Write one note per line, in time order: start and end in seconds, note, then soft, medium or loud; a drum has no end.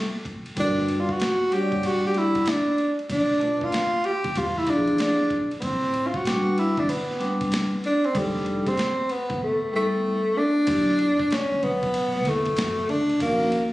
0.00 0.26 A3 medium
0.25 kick medium
0.25 ride soft
0.46 ride soft
0.55 1.01 G1 medium
0.55 1.04 G3 medium
0.55 1.05 D4 medium
0.55 1.05 F#4 medium
0.55 0.66 A#4 soft
0.55 kick loud
0.55 ride medium
0.60 1.01 D4 medium
0.64 1.09 B4 medium
0.78 snare soft
0.89 ride medium
1.00 1.13 F4 medium
1.09 1.55 F#4 medium
1.09 kick medium
1.20 snare loud
1.20 hi-hat pedal soft
1.20 ride medium
1.50 2.42 G3 medium
1.50 2.42 D4 medium
1.50 1.88 G4 medium
1.50 1.61 C#5 medium
1.50 2.42 F#5 medium
1.50 ride medium
1.60 2.46 D5 medium
1.72 1.82 F#1 medium
1.72 kick medium
1.72 ride soft
1.83 2.05 F#4 loud
1.83 ride medium
2.05 2.19 G4 medium
2.05 snare soft
2.14 2.50 E4 loud
2.14 snare soft
2.14 ride medium
2.35 kick medium
2.35 ride soft
2.46 3.00 D4 medium
2.46 snare loud
2.46 hi-hat pedal medium
2.46 ride medium
2.78 ride soft
2.99 ride soft
3.10 3.54 B1 medium
3.10 3.65 D4 medium
3.10 kick loud
3.10 ride medium
3.32 snare soft
3.40 3.65 A3 medium
3.40 3.66 D4 medium
3.40 3.67 F4 medium
3.40 3.67 B4 medium
3.40 ride medium
3.61 4.07 F4 medium
3.61 kick medium
3.72 snare loud
3.72 hi-hat pedal soft
3.72 ride medium
4.04 4.40 G4 loud
4.04 ride medium
4.24 4.34 A1 medium
4.24 kick medium
4.24 ride soft
4.35 4.90 E2 loud
4.35 4.59 F4 medium
4.35 ride medium
4.57 4.71 E4 medium
4.57 snare soft
4.66 5.15 F3 medium
4.66 5.15 D4 medium
4.66 5.00 D4 loud
4.66 5.16 E4 medium
4.66 4.77 F4 medium
4.66 kick medium
4.66 snare soft
4.66 ride medium
4.76 5.20 G#4 medium
4.88 ride soft
4.98 5.49 D4 medium
4.98 snare loud
4.98 hi-hat pedal soft
4.98 ride medium
5.30 kick medium
5.30 ride soft
5.51 ride soft
5.60 6.07 A1 medium
5.60 5.65 B3 medium
5.60 6.08 C4 medium
5.60 kick loud
5.60 ride medium
5.83 snare soft
5.94 ride soft
6.07 6.18 F4 medium
6.14 6.60 F#4 medium
6.14 kick medium
6.24 6.73 G3 medium
6.24 6.74 C4 medium
6.24 6.74 D4 medium
6.24 6.75 B4 medium
6.24 snare loud
6.24 hi-hat pedal soft
6.24 ride medium
6.58 6.81 E4 medium
6.58 ride medium
6.77 6.87 G1 medium
6.77 6.91 D4 medium
6.77 kick medium
6.77 ride soft
6.89 7.41 B3 medium
6.89 ride medium
7.11 snare soft
7.18 7.67 G3 medium
7.18 7.68 C4 medium
7.18 7.68 D4 medium
7.18 7.69 B4 medium
7.18 ride medium
7.22 snare soft
7.41 kick medium
7.41 ride soft
7.52 snare loud
7.52 hi-hat pedal medium
7.52 ride medium
7.84 8.07 D4 medium
7.84 ride soft
8.04 8.19 C4 medium
8.04 ride soft
8.13 8.59 F1 medium
8.13 8.62 G3 medium
8.13 8.62 D4 medium
8.13 8.63 D#4 medium
8.13 8.63 A4 medium
8.13 kick loud
8.13 ride medium
8.18 8.70 G3 medium
8.36 snare soft
8.46 ride soft
8.67 9.13 C4 medium
8.67 kick medium
8.67 snare soft
8.67 ride soft
8.77 snare loud
8.77 hi-hat pedal soft
8.77 ride medium
9.09 9.42 B3 medium
9.09 ride medium
9.30 9.40 G1 medium
9.30 kick medium
9.30 ride soft
9.43 9.72 A3 medium
9.72 10.12 G3 medium
9.72 10.39 A3 medium
9.72 10.13 B3 medium
9.72 10.13 D#4 soft
9.72 10.14 A4 medium
10.38 11.35 D4 loud
10.66 11.21 E2 medium
10.66 10.92 F#3 medium
10.66 10.92 D4 medium
10.66 10.93 E4 medium
10.66 10.93 G4 medium
10.66 kick loud
10.66 ride medium
10.89 snare soft
10.99 ride medium
11.19 kick medium
11.31 11.65 C#4 loud
11.31 snare loud
11.31 hi-hat pedal soft
11.31 ride medium
11.52 muted upright bass stroke soft
11.62 12.26 B1 medium
11.62 12.30 B3 loud
11.62 ride soft
11.83 kick medium
11.83 ride soft
11.94 ride medium
12.16 snare soft
12.25 12.53 E2 medium
12.25 12.92 A3 loud
12.25 snare soft
12.25 ride medium
12.46 kick medium
12.46 ride soft
12.57 12.90 F#2 medium
12.57 snare loud
12.57 hi-hat pedal medium
12.57 ride medium
12.89 13.21 C#2 medium
12.89 13.21 D4 loud
12.89 ride soft
13.09 ride soft
13.19 13.73 D#2 medium
13.19 13.45 F3 medium
13.19 13.68 A#3 loud
13.19 13.45 C#4 medium
13.19 13.46 D#4 medium
13.19 13.46 F#4 medium
13.19 kick loud
13.19 ride medium
13.42 snare soft
13.52 ride medium